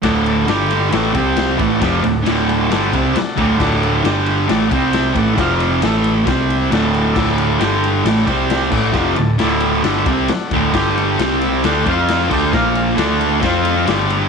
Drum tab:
CC |--------|--------|x-------|--------|
RD |xxxxxxxx|xxxxxxxx|-xxxxxxx|xxxxxxxx|
SD |o-o-o-o-|o-o-o-o-|o-o-o-o-|o-o-o-o-|
BD |o----o-o|o----o-o|o----o-o|o---o---|

CC |x------x|--------|x------x|--------|
RD |-xxxxxx-|-xxxxxxx|-xxxxxx-|-xxxxxxx|
SD |o-o-o-o-|o-o-o-o-|o-o-o-o-|o-o-o-o-|
BD |o----o-o|o----o-o|o----o-o|o---o---|